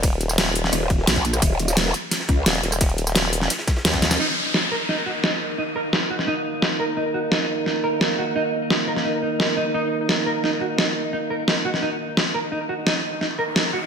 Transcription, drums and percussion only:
0.03 kick, closed hi-hat, ride, tambourine
0.12 closed hi-hat
0.20 closed hi-hat, tambourine
0.29 cross-stick, snare, tambourine
0.38 snare, closed hi-hat, ride, tambourine
0.46 snare
0.55 closed hi-hat, open hi-hat, tambourine
0.64 snare
0.72 closed hi-hat, ride, tambourine
0.81 closed hi-hat
0.90 kick, closed hi-hat
0.98 snare
1.07 snare, closed hi-hat, ride, tambourine
1.16 kick, closed hi-hat
1.25 closed hi-hat, tambourine
1.33 cross-stick, closed hi-hat, tambourine
1.42 kick, closed hi-hat, ride, tambourine
1.59 closed hi-hat, tambourine
1.68 snare, tambourine
1.76 snare, closed hi-hat, ride, tambourine
1.85 snare
1.94 closed hi-hat, tambourine
2.11 snare, closed hi-hat, ride, tambourine
2.20 snare
2.28 kick, closed hi-hat
2.46 snare, closed hi-hat, ride, tambourine
2.55 closed hi-hat
2.63 snare, closed hi-hat, tambourine
2.72 cross-stick, closed hi-hat, tambourine
2.81 kick, snare, closed hi-hat, ride, tambourine
2.89 closed hi-hat
2.98 closed hi-hat, tambourine
3.07 cross-stick, snare, tambourine
3.15 snare, closed hi-hat, ride, tambourine
3.24 snare
3.33 closed hi-hat, open hi-hat, tambourine
3.41 snare
3.50 snare, closed hi-hat, ride, tambourine
3.59 snare, closed hi-hat
3.67 kick, snare, closed hi-hat, tambourine
3.76 snare, closed hi-hat
3.85 snare, closed hi-hat, ride, tambourine
3.94 kick, snare, closed hi-hat
4.02 snare, closed hi-hat, tambourine
4.10 snare, closed hi-hat, tambourine
4.54 snare
4.89 snare
5.24 snare
5.93 snare
6.19 snare
6.62 snare
7.32 snare
7.66 snare
8.01 snare
8.70 snare
8.96 snare
9.40 snare
10.09 snare
10.44 snare
10.78 snare
11.48 snare
11.74 snare
12.17 snare
12.87 snare
13.21 snare
13.56 snare

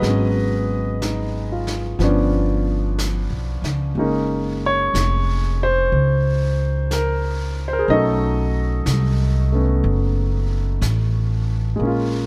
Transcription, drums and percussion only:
0.03 brush sweep, snare
1.02 brush sweep, snare, hi-hat pedal
1.67 snare
2.00 brush sweep, snare
2.98 brush sweep, snare, hi-hat pedal
3.64 snare
3.97 brush sweep
4.95 brush sweep, snare, hi-hat pedal
5.93 brush sweep
6.91 brush sweep, snare, hi-hat pedal
7.88 brush sweep
8.86 brush sweep, snare, hi-hat pedal
9.84 brush sweep
10.82 brush sweep, snare, hi-hat pedal
11.80 brush sweep

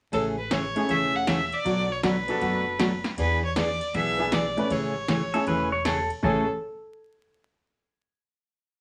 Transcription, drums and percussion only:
0.13 kick, ride
0.51 kick, snare, hi-hat pedal, ride
0.76 ride
0.89 kick, ride
1.27 kick, snare, hi-hat pedal, ride
1.52 ride
1.65 kick, ride
2.03 kick, snare, hi-hat pedal, ride
2.28 ride
2.41 kick, ride
2.79 kick, snare, hi-hat pedal, ride
3.04 snare, ride
3.18 kick, ride
3.56 kick, snare, hi-hat pedal, ride
3.81 ride
3.94 kick, ride
4.32 kick, snare, hi-hat pedal, ride
4.58 ride
4.70 kick, ride
5.08 kick, snare, hi-hat pedal, ride
5.34 ride
5.47 kick, ride
5.85 kick, snare, hi-hat pedal, ride
6.10 ride
6.23 kick

